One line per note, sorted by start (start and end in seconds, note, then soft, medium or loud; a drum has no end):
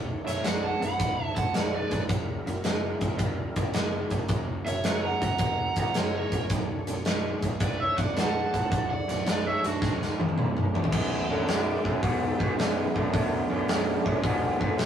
0.00 0.18 B0 medium
0.00 0.22 B1 medium
0.00 0.22 F#2 medium
0.00 2.07 A3 medium
0.00 2.07 D4 medium
0.00 2.07 C#5 medium
0.25 0.40 B0 medium
0.25 0.41 B1 medium
0.25 0.41 F#2 medium
0.25 0.44 C#5 medium
0.25 0.45 E5 medium
0.25 snare soft
0.25 closed hi-hat medium
0.42 0.73 B0 medium
0.42 0.77 B1 medium
0.42 0.77 F#2 medium
0.42 0.62 F#5 medium
0.42 snare loud
0.42 closed hi-hat medium
0.47 0.63 D5 medium
0.63 0.81 F#5 medium
0.63 0.81 A5 medium
0.79 0.95 B0 medium
0.79 0.96 B1 medium
0.79 0.96 F#2 medium
0.79 1.24 B5 loud
0.79 closed hi-hat medium
0.84 1.34 F#5 medium
0.98 1.28 B0 medium
0.98 1.32 B1 medium
0.98 1.32 G#2 medium
0.98 kick loud
0.98 closed hi-hat medium
1.24 1.35 A5 loud
1.36 1.50 F#1 medium
1.36 1.52 B1 medium
1.36 1.52 G#2 medium
1.36 1.54 F#5 medium
1.36 1.53 A5 medium
1.36 kick medium
1.36 closed hi-hat medium
1.53 1.83 B0 medium
1.53 1.87 B1 medium
1.53 1.88 F#2 medium
1.53 1.72 F#5 medium
1.53 snare loud
1.53 closed hi-hat medium
1.57 1.73 D5 medium
1.73 2.03 B4 medium
1.73 2.03 D5 loud
1.91 2.05 B0 medium
1.91 2.08 B1 medium
1.91 2.07 F#2 medium
1.91 kick medium
1.91 closed hi-hat medium
2.09 2.38 F#1 medium
2.09 2.42 F#2 medium
2.09 2.43 C#3 medium
2.09 4.27 G3 medium
2.09 4.26 E4 medium
2.09 4.26 A#4 medium
2.09 kick loud
2.09 closed hi-hat medium
2.46 2.60 F#1 medium
2.46 2.62 F#2 medium
2.46 2.63 C#3 medium
2.46 closed hi-hat medium
2.64 2.92 F#1 medium
2.64 2.98 F#2 medium
2.64 2.98 C#3 medium
2.64 snare loud
2.64 closed hi-hat medium
3.01 3.15 F#1 medium
3.01 3.16 F#2 medium
3.01 3.17 C#3 medium
3.01 kick medium
3.01 closed hi-hat medium
3.18 3.48 F#1 medium
3.18 3.52 F#2 medium
3.18 3.52 D#3 medium
3.18 kick loud
3.18 closed hi-hat medium
3.56 3.70 F#1 medium
3.56 3.73 F#2 medium
3.56 3.73 D#3 medium
3.56 kick medium
3.56 closed hi-hat medium
3.74 4.03 F#1 medium
3.74 4.08 F#2 medium
3.74 4.08 C#3 medium
3.74 snare loud
3.74 closed hi-hat medium
4.10 4.25 F#1 medium
4.10 4.28 F#2 medium
4.10 4.28 C#3 medium
4.10 kick medium
4.10 closed hi-hat medium
4.27 4.58 F#1 medium
4.27 4.63 F#2 medium
4.27 4.63 C#3 medium
4.27 6.46 E4 medium
4.27 6.46 G4 medium
4.27 6.46 A#4 medium
4.27 kick loud
4.27 closed hi-hat medium
4.65 4.80 F#1 medium
4.65 4.82 F#2 medium
4.65 4.82 C#3 medium
4.65 4.84 C#5 medium
4.65 4.85 E5 medium
4.65 closed hi-hat medium
4.84 5.13 F#1 medium
4.84 5.18 F#2 medium
4.84 5.18 C#3 medium
4.84 5.04 C#5 medium
4.84 5.03 F#5 medium
4.84 snare medium
4.84 closed hi-hat medium
5.03 5.22 F#5 medium
5.03 5.21 A#5 medium
5.21 5.35 F#1 medium
5.21 5.38 F#2 medium
5.21 5.38 C#3 medium
5.21 5.76 A#5 loud
5.21 kick medium
5.21 closed hi-hat medium
5.26 5.75 F#5 medium
5.38 5.68 F#1 medium
5.38 5.73 F#2 medium
5.38 5.73 D#3 medium
5.38 kick loud
5.38 closed hi-hat medium
5.76 5.90 C#2 medium
5.76 5.93 F#2 medium
5.76 5.93 D#3 medium
5.76 kick medium
5.76 closed hi-hat medium
5.80 5.95 F#5 medium
5.80 5.96 A#5 medium
5.94 6.23 F#1 medium
5.94 6.29 F#2 medium
5.94 6.29 C#3 medium
5.94 6.14 F#5 medium
5.94 snare loud
5.94 closed hi-hat medium
5.99 6.14 C#5 medium
6.16 6.44 A#4 medium
6.16 6.44 C#5 loud
6.32 6.46 F#1 medium
6.32 6.49 F#2 medium
6.32 6.49 C#3 medium
6.32 kick medium
6.32 closed hi-hat medium
6.46 6.66 A#3 medium
6.46 6.66 D#4 medium
6.46 6.67 D5 medium
6.46 kick loud
6.46 closed hi-hat medium
6.51 6.78 B0 medium
6.51 6.85 B1 medium
6.51 6.85 F#2 loud
6.65 8.67 A3 medium
6.65 8.67 D4 medium
6.65 8.67 C#5 medium
6.87 7.01 B0 medium
6.87 7.03 B1 medium
6.87 7.03 F#2 medium
6.87 closed hi-hat medium
7.05 7.34 B0 medium
7.05 7.39 B1 medium
7.05 7.39 F#2 medium
7.05 snare loud
7.05 closed hi-hat medium
7.42 7.56 B0 medium
7.42 7.59 B1 medium
7.42 7.59 F#2 medium
7.42 kick medium
7.42 closed hi-hat medium
7.60 7.89 B0 medium
7.60 7.94 B1 medium
7.60 7.94 G#2 medium
7.60 7.80 D5 loud
7.60 kick loud
7.60 closed hi-hat medium
7.65 7.83 B4 medium
7.80 8.01 C#5 medium
7.80 7.97 E5 medium
7.97 8.11 B0 medium
7.97 8.14 B1 medium
7.97 8.14 G#2 medium
7.97 8.17 F#5 medium
7.97 kick medium
7.97 closed hi-hat medium
8.01 8.17 D5 medium
8.15 8.44 B0 medium
8.15 8.49 B1 medium
8.15 8.49 F#2 medium
8.15 8.87 A5 loud
8.15 snare loud
8.15 closed hi-hat medium
8.20 8.91 F#5 medium
8.54 8.67 B0 medium
8.54 8.69 B1 medium
8.54 8.69 F#2 medium
8.54 kick medium
8.54 closed hi-hat medium
8.68 9.04 B1 medium
8.68 9.04 F#2 medium
8.68 8.87 A#3 medium
8.68 8.86 D4 medium
8.68 8.87 D#4 medium
8.68 kick loud
8.68 closed hi-hat medium
8.72 9.00 B0 medium
8.87 10.88 A3 medium
8.87 10.88 C#4 medium
8.87 10.88 D4 medium
8.87 9.07 F#5 medium
8.93 9.08 D5 medium
9.08 9.22 B0 medium
9.08 9.24 B1 medium
9.08 9.24 F#2 medium
9.08 9.26 D5 medium
9.08 9.26 F#5 medium
9.08 snare soft
9.08 closed hi-hat medium
9.26 9.55 B0 medium
9.26 9.59 B1 medium
9.26 9.59 F#2 medium
9.26 9.44 B4 medium
9.26 9.47 D5 medium
9.26 snare medium
9.26 closed hi-hat medium
9.47 9.64 C#5 medium
9.47 9.63 E5 medium
9.64 9.77 B0 medium
9.64 9.79 B1 medium
9.64 9.80 F#2 medium
9.64 9.92 D4 medium
9.64 9.93 F#4 medium
9.64 closed hi-hat medium
9.81 10.10 B0 medium
9.81 10.14 B1 medium
9.81 10.15 G#2 medium
9.81 kick loud
9.81 snare medium
10.02 snare soft
10.19 10.33 F#1 medium
10.19 10.34 B1 medium
10.19 10.35 G#2 medium
10.19 high tom medium
10.29 high tom medium
10.37 10.65 B0 medium
10.37 10.70 B1 medium
10.37 10.70 F#2 medium
10.37 mid tom medium
10.57 mid tom medium
10.74 10.88 B0 medium
10.74 10.89 B1 medium
10.74 10.90 F#2 medium
10.74 floor tom medium
10.84 floor tom medium
10.92 11.20 B0 medium
10.92 11.25 B1 medium
10.92 11.25 F#2 medium
10.92 kick loud
10.92 crash loud
11.30 11.43 B0 medium
11.30 11.45 B1 medium
11.30 11.45 F#2 medium
11.30 11.60 D3 medium
11.30 11.60 A3 soft
11.30 11.60 C#4 medium
11.46 11.75 B0 medium
11.46 11.80 B1 medium
11.46 11.80 F#2 medium
11.46 11.83 D5 medium
11.46 snare loud
11.46 open hi-hat soft
11.83 11.98 B0 medium
11.83 11.99 B1 medium
11.83 12.00 F#2 medium
11.83 12.02 A4 medium
11.83 kick medium
12.02 12.31 B0 medium
12.02 12.35 B1 medium
12.02 12.35 G#2 medium
12.02 12.20 F#4 medium
12.02 kick loud
12.02 open hi-hat soft
12.22 12.39 A4 medium
12.38 12.53 B0 medium
12.38 12.54 B1 medium
12.38 12.55 G#2 medium
12.38 12.57 F#4 medium
12.38 kick medium
12.57 12.85 B0 medium
12.57 12.91 B1 medium
12.57 12.91 F#2 medium
12.57 12.77 D4 medium
12.57 snare loud
12.57 open hi-hat soft
12.77 12.94 B3 medium
12.94 13.09 B0 medium
12.94 13.11 B1 medium
12.94 13.11 F#2 medium
12.94 13.46 A3 medium
12.94 14.56 D4 medium
12.94 kick medium
13.12 13.42 B0 medium
13.12 13.45 B1 medium
13.12 13.46 F#2 medium
13.12 kick loud
13.12 open hi-hat medium
13.47 13.63 B0 medium
13.47 13.65 B1 medium
13.47 13.66 F#2 medium
13.47 14.18 D3 medium
13.47 14.18 A3 medium
13.47 14.18 C#4 medium
13.67 13.96 B0 medium
13.67 14.01 B1 medium
13.67 14.01 F#2 medium
13.67 snare loud
13.67 open hi-hat medium
14.04 14.19 B0 medium
14.04 14.20 B1 medium
14.04 14.21 F#2 medium
14.04 kick medium
14.22 14.52 B0 medium
14.22 14.56 B1 medium
14.22 14.56 G#2 medium
14.22 kick loud
14.22 open hi-hat medium
14.58 14.74 F#1 medium
14.58 14.75 B1 medium
14.58 14.76 G#2 medium
14.58 14.75 D3 soft
14.58 14.75 A3 soft
14.58 14.76 C#4 soft
14.58 kick medium
14.77 14.86 B0 medium
14.77 14.86 B1 medium
14.77 14.86 F#2 loud
14.77 snare loud
14.77 open hi-hat medium